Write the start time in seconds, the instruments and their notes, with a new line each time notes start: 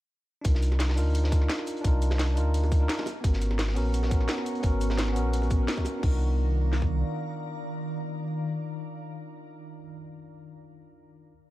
0.41 sub bass C2, tine electric piano D4 D#4, kick, closed hi-hat
0.46 tine electric piano F4 A#4
0.55 snare
0.62 closed hi-hat, shaker
0.72 snare, high bongo
0.79 snare, closed hi-hat
0.89 snare
0.95 sub bass D2, tine electric piano D4 D#4 F4 A#4, closed hi-hat, open hi-hat, shaker
1.15 closed hi-hat
1.23 snare, high bongo
1.29 tine electric piano D4 D#4, kick, closed hi-hat, shaker
1.33 tine electric piano F4 A#4
1.41 snare
1.49 snare, closed hi-hat
1.59 snare
1.67 closed hi-hat, shaker
1.77 closed hi-hat
1.81 sub bass C2, tine electric piano D4 D#4, kick, closed hi-hat
1.85 tine electric piano F4 A#4
2.02 closed hi-hat, shaker
2.11 snare, high bongo
2.19 snare, closed hi-hat
2.34 sub bass D2, tine electric piano D4 D#4, closed hi-hat, shaker
2.38 tine electric piano F4 A#4
2.54 closed hi-hat
2.63 closed hi-hat, high bongo
2.72 kick, closed hi-hat, shaker
2.79 tine electric piano D4 D#4 F4 A#4
2.89 snare, closed hi-hat
2.98 snare, high bongo
3.06 closed hi-hat, high bongo, shaker
3.21 sub bass G#1, tine electric piano B3 C#4, ambient pad B3 F#5 A#5 C#6, kick, closed hi-hat
3.25 tine electric piano F#4 A#4
3.33 snare
3.42 closed hi-hat, shaker
3.51 snare, high bongo
3.59 snare, closed hi-hat
3.68 snare
3.75 sub bass A#1, tine electric piano B3 C#4 F#4 A#4, closed hi-hat, open hi-hat, shaker
3.94 closed hi-hat
4.03 snare, high bongo
4.08 tine electric piano B3 C#4, kick, closed hi-hat, shaker
4.12 tine electric piano F#4 A#4
4.21 snare
4.28 snare, closed hi-hat
4.38 snare
4.46 closed hi-hat, shaker
4.55 closed hi-hat
4.60 sub bass G#1, tine electric piano B3 C#4, kick, closed hi-hat
4.65 tine electric piano F#4 A#4
4.81 closed hi-hat, shaker
4.90 snare, high bongo
4.98 snare, closed hi-hat
5.08 snare
5.13 sub bass A#1, tine electric piano B3 C#4, closed hi-hat, shaker
5.17 tine electric piano F#4 A#4
5.33 closed hi-hat
5.42 closed hi-hat, high bongo
5.50 kick, closed hi-hat, shaker
5.57 tine electric piano B3 C#4
5.61 tine electric piano F#4 A#4
5.68 snare, closed hi-hat
5.77 kick, high bongo
5.85 closed hi-hat, high bongo, shaker
5.98 tine electric piano D4 D#4
6.03 sub bass C2, ambient pad D#3 D5 F5 A#5, tine electric piano F4, kick, crash
6.08 tine electric piano A#4
6.73 snare
6.82 kick